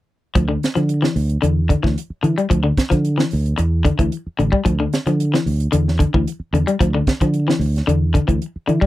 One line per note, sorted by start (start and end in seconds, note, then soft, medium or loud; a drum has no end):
0.35 0.56 D2 medium
0.35 0.44 F3 medium
0.35 kick medium
0.35 closed hi-hat medium
0.48 0.66 D3 medium
0.63 snare medium
0.63 closed hi-hat soft
0.75 1.06 D3 medium
0.75 0.93 F3 medium
0.75 closed hi-hat soft
0.89 closed hi-hat medium
1.02 1.20 E3 medium
1.02 snare medium
1.16 1.36 D2 medium
1.16 open hi-hat medium
1.29 closed hi-hat soft
1.42 1.74 E2 medium
1.42 1.59 D3 medium
1.42 closed hi-hat medium
1.69 1.78 D3 medium
1.69 kick medium
1.69 closed hi-hat soft
1.83 1.94 D2 medium
1.83 2.01 E3 medium
1.83 kick medium
1.83 snare soft
1.98 closed hi-hat medium
2.10 muted fingered electric bass stroke soft
2.23 2.32 D3 medium
2.23 2.34 E3 medium
2.23 closed hi-hat soft
2.38 2.46 G3 medium
2.38 closed hi-hat soft
2.50 2.71 D2 medium
2.50 2.59 F3 medium
2.50 kick medium
2.50 closed hi-hat medium
2.64 2.81 D3 medium
2.77 kick medium
2.77 snare medium
2.77 closed hi-hat soft
2.90 3.22 D3 medium
2.90 3.08 F3 medium
2.90 kick medium
2.90 closed hi-hat soft
3.05 closed hi-hat medium
3.18 3.35 E3 medium
3.18 snare medium
3.31 3.53 D2 medium
3.31 open hi-hat medium
3.46 closed hi-hat soft
3.58 3.89 E2 medium
3.58 muted clean electric guitar stroke medium
3.58 closed hi-hat medium
3.85 3.94 D3 medium
3.85 kick medium
3.85 closed hi-hat soft
3.99 4.09 D2 medium
3.99 4.16 E3 medium
3.99 kick medium
3.99 closed hi-hat soft
4.12 closed hi-hat medium
4.26 muted fingered electric bass stroke soft
4.39 4.50 A1 medium
4.39 4.48 D3 medium
4.39 closed hi-hat soft
4.52 4.60 G3 medium
4.52 kick medium
4.65 4.86 D2 medium
4.65 4.74 F3 medium
4.65 kick medium
4.65 closed hi-hat medium
4.80 4.97 D3 medium
4.93 snare medium
4.93 closed hi-hat soft
5.06 5.36 D3 medium
5.06 5.24 F3 medium
5.06 closed hi-hat soft
5.20 closed hi-hat medium
5.34 5.51 E3 medium
5.34 snare medium
5.46 5.66 D2 medium
5.46 open hi-hat medium
5.60 closed hi-hat soft
5.72 6.04 E2 medium
5.72 5.90 D3 medium
5.72 closed hi-hat medium
5.88 snare soft
5.99 6.08 D3 medium
5.99 kick medium
5.99 closed hi-hat soft
6.14 6.24 D2 medium
6.14 6.31 E3 medium
6.14 kick medium
6.28 closed hi-hat medium
6.40 muted fingered electric bass stroke soft
6.53 6.64 E2 medium
6.53 6.63 D3 medium
6.53 closed hi-hat soft
6.67 6.76 G3 medium
6.67 closed hi-hat soft
6.80 7.01 D2 medium
6.80 6.89 F3 medium
6.80 kick medium
6.80 closed hi-hat medium
6.95 7.12 D3 medium
7.07 kick medium
7.07 snare medium
7.07 closed hi-hat soft
7.21 7.51 D3 medium
7.21 7.39 F3 medium
7.21 kick medium
7.21 closed hi-hat soft
7.34 closed hi-hat medium
7.48 7.65 E3 medium
7.48 snare medium
7.59 7.80 D2 medium
7.59 open hi-hat medium
7.76 snare soft
7.76 closed hi-hat soft
7.87 8.19 E2 medium
7.87 8.05 D3 medium
7.87 closed hi-hat medium
8.14 8.23 D3 medium
8.14 kick medium
8.14 closed hi-hat soft
8.28 8.38 D2 medium
8.28 8.45 E3 medium
8.28 kick medium
8.28 closed hi-hat soft
8.42 closed hi-hat medium
8.56 muted fingered electric bass stroke soft
8.68 8.77 D3 medium
8.68 8.79 E3 medium
8.68 closed hi-hat soft
8.81 8.87 G3 medium
8.81 kick medium